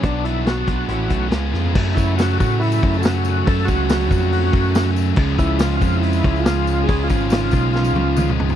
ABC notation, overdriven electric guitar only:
X:1
M:4/4
L:1/8
Q:1/4=140
K:Bdor
V:1 name="Overdriven electric guitar" clef=bass
[B,,F,B,DF] [B,,F,B,DF] [B,,F,B,DF] [B,,F,B,DF] [A,,E,A,CE] [A,,E,A,CE] [C,G,B,^E] [C,G,B,E] | [K:F#m] [F,,C,F,A,C]8 | [F,,C,F,A,C]8 | [C,^E,G,C]8 |
[C,^E,G,C]8 |]